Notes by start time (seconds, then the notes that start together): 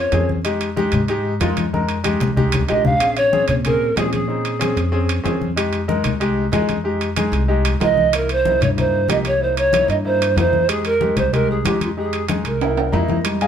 0.00 C#5
0.12 F2 C4 C#4 G#4, high conga, high timbale, low timbale
0.29 high conga
0.45 G#3 D#4 G4, high timbale
0.61 high conga, high timbale
0.76 G#3 D#4 G4, high conga, low timbale
0.92 G#2, high conga, low conga, high timbale
1.08 G#3 D#4 G4, high conga, high timbale
1.25 high conga
1.40 F2 G#3 D#4 F4, high conga, high timbale, low timbale
1.57 high conga, high timbale
1.73 G#3 D#4 A#4, high conga
1.89 high timbale
2.04 G#3 D#4 G4, high conga, high timbale, low timbale
2.20 C2, low conga, high timbale
2.37 G#3 D#4 G4, low conga
2.52 low conga, high timbale
2.69 A#1 G#3 D#4 G4 D#5, high timbale, low timbale
2.85 F5, low conga
3.00 C4 C#4 G#4, high conga, high timbale
3.17 C#5, high conga, high timbale
3.32 C4 C#4 G#4, high conga, low timbale
3.48 A#2 C#5, high conga, low conga, high timbale
3.65 C4 C#4 G#4 A#4, high conga, low conga, high timbale
3.82 high conga
3.96 A#2 C4 C#4 G#4, high conga, high timbale, low timbale
4.13 G#4, high conga, high timbale
4.28 C4 C#4 D#4, high conga
4.45 high conga, high timbale
4.60 C4 C#4 G#4, high conga, high timbale, low timbale
4.77 F2, high conga, high timbale
4.92 C4 C#4 G#4, high conga
5.09 high conga, high timbale
5.24 F2 C4 C#4 G#4, high conga, high timbale, low timbale
5.41 high conga
5.56 G#3 D#4 G4, high conga, high timbale
5.73 high conga, high timbale
5.88 G#3 D#4 A#4, high conga, low timbale
6.04 C2, high conga, low conga, high timbale
6.20 G#3 D#4 G4, high conga, high timbale
6.38 high conga
6.52 F2 G#3 D#4 G#4, high conga, high timbale, low timbale
6.69 high conga, high timbale
6.84 G#3 D#4 G4, high conga
7.01 high conga, high timbale
7.16 G#3 D#4 G#4, high conga, high timbale, low timbale
7.32 C2, high conga, high timbale
7.48 G#3 D#4 G4, high conga
7.65 high conga, high timbale
7.80 C2 G#3 D#4 A#4 D#5, high conga, high timbale, low timbale
7.97 high conga
8.13 A#3 D#4 E4, high conga, high timbale
8.17 A#4
8.29 C5, high conga, high timbale
8.45 A#3 D#4 E4, high conga, low timbale
8.61 G2 C#5, high conga, low conga, high timbale
8.77 A#3 D#4 E4 C5, high conga, low conga, high timbale
8.94 high conga
9.08 C2 A#3 D#4 G4 D#5, high conga, high timbale, low timbale
9.25 C#5, high timbale
9.40 A#3 D#4 E4 C5, high conga
9.57 C#5, high conga, high timbale
9.73 A#3 D#4 E4, high conga, high timbale, low timbale
9.88 G2 D#5, high conga, high timbale
10.05 A#3 D#4 E4 C5, high conga
10.21 high conga, high timbale
10.36 F2 A#3 D#4 E4 C5, high conga, high timbale, low timbale
10.53 high conga
10.68 G#3 D#4 G4 G#4, high conga, high timbale
10.85 A#4, high conga, high timbale
11.01 G#3 D#4 G4, high conga, low timbale
11.17 C2 C5, high conga, low conga, high timbale
11.33 G#3 D#4 G4 A#4, high conga, low conga, high timbale
11.50 G#4, high conga
11.65 F2 G#3 D#4 G4, high conga, high timbale, low timbale
11.81 F4, high conga, high timbale
11.97 G#3 D#4 G4 G#4, high conga
12.13 high conga, high timbale
12.28 G#3 D#4 G#4, high conga, high timbale, low timbale
12.45 C2 A#4, high conga, high timbale
12.61 A#3 D#4 E4, high conga, high timbale
12.77 high conga, high timbale
12.92 F2 A#3 D#4 E4 A#5, high conga, low timbale
13.08 high conga, low timbale
13.24 G3 G#3 D#4, high conga, high timbale
13.41 G#4 D#5 F5 G#5, high conga, high timbale